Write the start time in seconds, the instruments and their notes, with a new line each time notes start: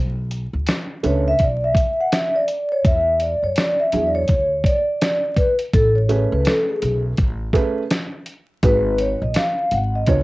Already playing: upright bass B1
0.31 closed hi-hat
0.53 upright bass D2
0.67 snare, closed hi-hat
1.03 upright bass C#2, upright piano A3 C#4 D4 B4, vibraphone C#5, closed hi-hat
1.28 vibraphone E5
1.39 upright bass B1, kick, closed hi-hat
1.43 vibraphone D5
1.64 vibraphone E5
1.75 kick, closed hi-hat
2.01 vibraphone F#5
2.12 vibraphone E5, snare, closed hi-hat
2.36 vibraphone D5
2.48 closed hi-hat
2.72 vibraphone C#5
2.84 upright bass E2, vibraphone E5, kick, closed hi-hat
3.20 vibraphone D5, closed hi-hat
3.43 upright bass F#2, vibraphone C#5
3.56 vibraphone D5, snare, closed hi-hat
3.80 vibraphone E5
3.92 upright bass E2, upright piano F#3 D4 E4 G#4, closed hi-hat
4.06 vibraphone D5
4.15 vibraphone C#5
4.28 upright bass D2, kick, closed hi-hat
4.64 vibraphone D5, kick, closed hi-hat
5.02 snare, closed hi-hat
5.37 vibraphone B4, kick, closed hi-hat
5.59 closed hi-hat
5.74 upright bass A1, vibraphone A4, kick, closed hi-hat
5.96 vibraphone C#5
6.09 upright piano A3 C#4 G#4 B4, closed hi-hat
6.32 upright bass C#2, vibraphone B4
6.45 vibraphone A4, snare, closed hi-hat
6.60 vibraphone A4
6.69 vibraphone G#4
6.82 upright bass B1, closed hi-hat
7.17 upright bass A1, kick, closed hi-hat
7.53 upright piano A3 C#4 G#4 B4, kick, closed hi-hat
7.90 snare, closed hi-hat
8.26 closed hi-hat
8.63 upright bass G#1, upright piano G#3 D#4 F#4 B4, vibraphone B4, kick, closed hi-hat
8.98 vibraphone C#5, closed hi-hat
9.22 upright bass A#1, vibraphone D#5
9.34 vibraphone F5, snare, closed hi-hat
9.71 upright bass G#1, vibraphone F#5, closed hi-hat
9.95 vibraphone D#5
10.07 upright bass C#2, upright piano B3 D4 F4 C#5, vibraphone C#5, kick, closed hi-hat